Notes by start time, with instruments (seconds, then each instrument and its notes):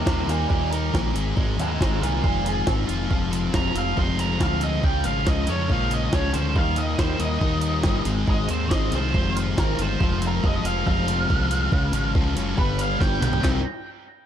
Already playing: distorted electric guitar D#3 G3
0.06 fingered electric bass D#2, distorted electric guitar D#3 G3 A#3 D#4, lead electric guitar G4 C5, kick, snare
0.27 fingered electric bass D#2, distorted electric guitar G3 A#3 D#4, lead electric guitar F4, closed hi-hat
0.31 lead electric guitar A#4
0.47 fingered electric bass D#2, distorted electric guitar D#3 G3 A#3 D#4 G4, lead electric guitar F4 A#4, kick
0.72 distorted electric guitar D#4, lead electric guitar A#4, closed hi-hat
0.92 fingered electric bass A#1, distorted electric guitar D#3 G3 A#3 D#4, kick, snare
1.13 fingered electric bass G#1, distorted electric guitar G#2 D#3 G#3 C4 D#4, closed hi-hat
1.35 fingered electric bass G#1, distorted electric guitar G#2 D#3 G#3 C4 D#4, kick
1.57 fingered electric bass D#2, distorted electric guitar G#3 C4 D#4, lead electric guitar G#4, closed hi-hat
1.61 lead electric guitar C5
1.78 fingered electric bass G#1, distorted electric guitar D#3 G#3 C4 D#4, lead electric guitar G#4, kick, snare
1.83 lead electric guitar C5
2.01 fingered electric bass C2, distorted electric guitar G#3 C4 D#4 F4, lead electric guitar F4 A#4, closed hi-hat
2.22 fingered electric bass F1, distorted electric guitar G#2 D#3 G#3 C4 D#4 C5, lead electric guitar F4 A#4, kick
2.45 distorted electric guitar F4, lead electric guitar G#4, closed hi-hat
2.66 fingered electric bass G#1, distorted electric guitar D#3 G#3 C4 D#4, kick, snare
2.86 fingered electric bass F1, distorted electric guitar G#3 C4 D#4 F4, closed hi-hat
3.09 fingered electric bass F1, distorted electric guitar F3 G#3 C4 F4, kick
3.30 distorted electric guitar G#3 C4 F4, closed hi-hat
3.52 fingered electric bass F1, distorted electric guitar F3 G#3 C4 F4, lead electric guitar A#5, kick, snare
3.74 fingered electric bass F1, distorted electric guitar G#3 C4 F4, lead electric guitar F5, closed hi-hat
3.95 fingered electric bass F1, distorted electric guitar F3 G#3 C4 D#4 F4, lead electric guitar C6, kick
4.18 distorted electric guitar C4, lead electric guitar A#5, closed hi-hat
4.39 fingered electric bass D2, distorted electric guitar F3 G#3 C4 F4, kick, snare
4.43 lead electric guitar F5
4.61 distorted electric guitar C4 F4, lead electric guitar D#5, closed hi-hat
4.65 distorted electric guitar G#3
4.83 fingered electric bass C#2, distorted electric guitar C#3 G#3 C#4 F4, lead electric guitar G5, kick
5.04 fingered electric bass G#1, distorted electric guitar F3 G#3 C#4 F4, lead electric guitar F5, closed hi-hat
5.25 fingered electric bass C#2, distorted electric guitar C#3 F3 G#3 C#4 F4, lead electric guitar D#5, kick, snare
5.47 fingered electric bass F2, distorted electric guitar G#3 C#4 F4, lead electric guitar C#5, closed hi-hat
5.68 fingered electric bass A#1, distorted electric guitar C#3 G#3 C#4 D#4 F4, lead electric guitar F5, kick
5.90 distorted electric guitar C#4, lead electric guitar D#5, closed hi-hat
6.12 fingered electric bass C#2, distorted electric guitar C#3 F3 G#3 C#4, lead electric guitar C#5, kick, snare
6.16 distorted electric guitar F4
6.33 fingered electric bass D2, distorted electric guitar G#3 C#4 F4, lead electric guitar C5, closed hi-hat
6.55 fingered electric bass D#2, distorted electric guitar D#3 G3 A#3 D#4, lead electric guitar F5, kick
6.76 distorted electric guitar G3 A#3 D#4, lead electric guitar D#5, closed hi-hat
6.97 fingered electric bass D#2, distorted electric guitar D#3 G3 A#3 D#4, lead electric guitar C5, kick, snare
7.18 fingered electric bass D#2, distorted electric guitar G3 A#3 D#4, lead electric guitar D#5, closed hi-hat
7.39 fingered electric bass D#2, distorted electric guitar D#3 G3 A#3 D#4, kick
7.61 distorted electric guitar A#3, closed hi-hat
7.83 fingered electric bass G1, distorted electric guitar D#3 G3 A#3 D#4, kick, snare
8.05 fingered electric bass G#1, distorted electric guitar G#2 D#3 G#3 C4 D#4, closed hi-hat
8.26 fingered electric bass G#1, distorted electric guitar G#2 D#3 G#3 C4 D#4, lead electric guitar D#5, kick
8.49 fingered electric bass D#2, distorted electric guitar G#3 C4 D#4, lead electric guitar C5, closed hi-hat
8.69 fingered electric bass G#1, distorted electric guitar D#3 G#3 C4 D#4, lead electric guitar D#5, kick, snare
8.91 fingered electric bass C2, distorted electric guitar G#3 C4 D#4 F4, closed hi-hat
8.96 lead electric guitar C5
9.13 fingered electric bass F1, distorted electric guitar G#2 D#3 G#3 C4 D#4 C5, kick
9.35 distorted electric guitar F4, closed hi-hat
9.57 fingered electric bass G#1, distorted electric guitar D#3 G#3 C4 D#4, lead electric guitar A#4, kick, snare
9.78 fingered electric bass G1, distorted electric guitar G#3 C4 D#4 F4, closed hi-hat
9.82 lead electric guitar C5
10.00 fingered electric bass F1, distorted electric guitar F3 G#3 C4 F4, kick
10.21 distorted electric guitar G#3 C4 F4, closed hi-hat
10.27 lead electric guitar A#4
10.44 fingered electric bass F1, distorted electric guitar F3 G#3 C4 F4, lead electric guitar D#5, kick
10.63 fingered electric bass F1, distorted electric guitar G#3 C4 F4, lead electric guitar F5, closed hi-hat
10.85 fingered electric bass F1, distorted electric guitar F3 G#3 C4 D#4 F4, lead electric guitar F5, kick
11.08 distorted electric guitar C4, closed hi-hat
11.28 fingered electric bass C2, distorted electric guitar F3 G#3 C4 F4, kick
11.49 distorted electric guitar G#3 C4 F4, closed hi-hat
11.71 fingered electric bass C#2, distorted electric guitar C#3 G#3 C#4 F4, kick
11.92 fingered electric bass G#1, distorted electric guitar F3 G#3 C#4 F4, closed hi-hat
12.14 fingered electric bass C#2, distorted electric guitar C#3 F3 G#3 C#4 F4, kick
12.35 fingered electric bass F#1, distorted electric guitar G#3 C#4 F4, closed hi-hat
12.55 fingered electric bass G1, distorted electric guitar G2 D3 G3 B3 D4, lead electric guitar B4, kick
12.78 distorted electric guitar D4, lead electric guitar F5, closed hi-hat
12.98 fingered electric bass G1, distorted electric guitar D3 G3 B3 D4, lead electric guitar G5, kick, snare
13.20 fingered electric bass B1, distorted electric guitar G3 B3 D4, closed hi-hat, mid tom
13.24 lead electric guitar G5
13.33 floor tom
13.41 fingered electric bass C2, distorted electric guitar C3 G3 C4 D#4 G4, kick, snare, clap